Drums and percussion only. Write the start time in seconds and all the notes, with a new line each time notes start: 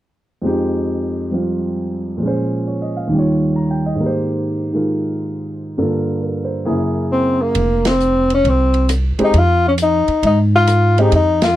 7.55 ride
7.85 snare, ride
8.00 hi-hat pedal
8.30 ride
8.45 ride
8.74 ride
8.89 cross-stick, hi-hat pedal, ride
9.19 ride
9.34 ride
9.78 hi-hat pedal, ride
10.08 ride
10.23 ride
10.67 cross-stick, hi-hat pedal, ride
10.98 ride
11.12 ride
11.42 snare, ride